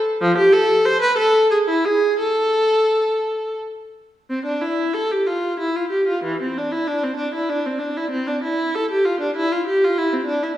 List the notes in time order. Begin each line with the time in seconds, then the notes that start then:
0.21 F3
0.38 G4
0.53 A4
0.86 C5
1.02 B4
1.17 A4
1.51 G#4
1.69 E4
1.85 G#4
2.19 A4
4.30 C4
4.45 D4
4.62 E4
4.94 A4
5.12 G4
5.27 F4
5.60 E4
5.76 F4
5.90 G4
6.08 F4
6.24 E3
6.41 C4
6.58 D4
6.72 E4
6.87 D4
7.04 C4
7.17 D4
7.34 E4
7.50 D4
7.66 C4
7.79 D4
7.97 E4
8.11 C4
8.27 D4
8.43 E4
8.75 A4
8.91 G4
9.05 F4
9.20 D4
9.36 E4
9.52 F4
9.67 G4
9.84 F4
9.98 E4
10.13 C4
10.26 D4
10.43 E4